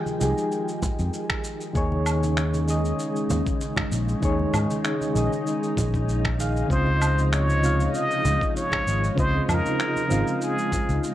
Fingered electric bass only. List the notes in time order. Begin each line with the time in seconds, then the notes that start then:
0.21 C2
0.99 F2
1.75 D#2
3.30 D#2
3.92 A#1
4.23 D#2
4.54 G#2
5.16 A#1
5.77 A#1
6.70 C#2
8.25 C#2
8.87 G#1
9.18 C#2
9.49 F2
10.11 G#1
10.89 C#2